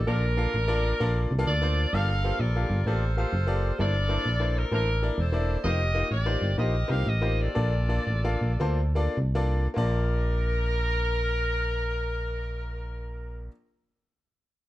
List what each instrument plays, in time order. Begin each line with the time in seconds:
0.07 fm bass A#1, grand piano A#2 A#3 D4 F4 A4 D5, saxophone section D4 F4 A#4
0.37 grand piano A#3 D4 F4 A4 F5
0.54 fm bass A1
0.68 grand piano A#3 D4 F4 A4 D5
1.00 fm bass A#1, grand piano A#3 D4 F4 A4 D5
1.31 fm bass C2
1.39 grand piano A#3 D4 F4 A4 F5
1.47 fm bass D2, saxophone section F4 A4 D5
1.62 grand piano A#3 D4 F4 A4 C5
1.93 fm bass G1, grand piano G2 A#3 F4 G4 A4 D5, saxophone section A4 A#4 F5
2.24 grand piano A#3 F4 G4 A4 C5
2.40 fm bass A#1, saxophone section F4 A#4 D5
2.56 grand piano A#3 F4 G4 A4 F5
2.70 fm bass G1
2.86 fm bass A1, grand piano A#3 F4 G4 A4 D5, saxophone section F4 A4 C5
3.17 grand piano A#3 F4 G4 A4 F5, saxophone section F4 A4 C5
3.33 fm bass F#1
3.47 grand piano A#3 F4 G4 A4 D5
3.79 fm bass G1, grand piano G2 A#3 D4 E4 A4 C5, saxophone section A4 A#4 D5
4.09 grand piano A#3 D4 E4 A4 C5
4.26 fm bass A#1
4.40 grand piano A#3 D4 E4 A4 C5
4.57 saxophone section A#4
4.72 fm bass A1, grand piano A#3 D4 E4 A4 C5, saxophone section D4 E4 A#4
5.02 grand piano A#3 D4 E4 A4 D5
5.18 fm bass E1, saxophone section E4 A4 C5
5.32 grand piano A#3 D4 E4 A4 D5
5.64 fm bass F1, grand piano A#3 D#4 F4 G4 C5, saxophone section G4 A#4 D#5
5.94 grand piano A#3 D#4 F4 G4 D#5
6.10 fm bass A1, saxophone section G4 A#4 D5
6.26 grand piano A#3 D#4 F4 G4 C5
6.42 fm bass G1
6.57 fm bass A#1, grand piano A#3 D#4 F4 G4 C5, saxophone section G4 A#4 D#5
6.88 fm bass C2, grand piano A#3 D#4 F4 G4 C5, saxophone section F5
7.06 fm bass A1, saxophone section D#5
7.21 grand piano A#3 D#4 F4 G4 C5
7.41 saxophone section F4 A4 D5
7.55 fm bass A#1, grand piano A#2 A#3 D4 F4 A4 D5
7.89 grand piano A#3 D4 F4 A4 D5
8.07 fm bass A1
8.24 grand piano A#3 D4 F4 A4 F5
8.41 fm bass A#1
8.60 fm bass D2, grand piano A#3 D4 F4 A4 C5
8.95 grand piano A#3 D4 F4 A4 D5
9.17 fm bass C2
9.35 grand piano A#3 D4 F4 A4 D5
9.74 grand piano A#1 A#3 F4 D5 A5, fm bass A#1
9.78 saxophone section A#4